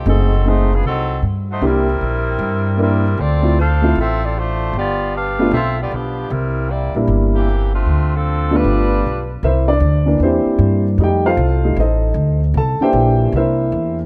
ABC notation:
X:1
M:4/4
L:1/8
Q:"Swing" 1/4=154
K:Cmix
V:1 name="Saxophone section"
[^F,C^DA]2 [A,D^Fc] [=F,=B,=D_A] [^F,C^D=A]2 z [A,DFc] | [G,CEB]6 [G,CEB]2 | [CFAd]2 [DAcf]2 [CFAe] [CFAd] [A,DFc]2 | [=B,FGd]2 [DG=Bf]2 [CFAe] [B,FGd] [F,B,DG]2 |
[G,CEB]2 [B,EGd] z2 [E,B,CG]2 [A,CDF]- | [A,CDF] [F,CDA]2 [G,DF=B]4 z | z8 | z8 |
z8 |]
V:2 name="Upright piano"
[A,C^D_A] z [=A,CD_A] z4 z | [B,DEG] z4 z [B,DEB] z | z [A,CEF] z [A,CEF] z4 | z3 [A,=B,DF] z4 |
z3 [G,B,DE]3 z2 | z3 [F,A,=B,D]3 z2 | [EBce] [Dd]3 [CEGc]3 z | [Gg] [FAcf]3 [_EAc_e]3 z |
[Aa] [Gceg]3 [EBce]3 z |]
V:3 name="Upright piano"
z8 | z8 | z8 | z8 |
z8 | z8 | z3 [E,B,D]4- [E,B,D] | [G,A,_E] z2 [G,A,E] z4 |
z [E,B,D]6- [E,B,D] |]
V:4 name="Upright bass" clef=bass
^F,,,4 C,,2 G,,2 | C,,2 B,,,2 G,,4 | D,,4 A,,,4 | G,,,4 =B,,,2 B,,,2 |
C,,3 B,,, G,,,4 | D,,4 G,,,2 =B,,,2 | C,,2 D,,2 E,, z G,,2 | F,,2 C,,2 A,,,2 D,,2 |
C,, z B,,,2 C,,2 E,,2 |]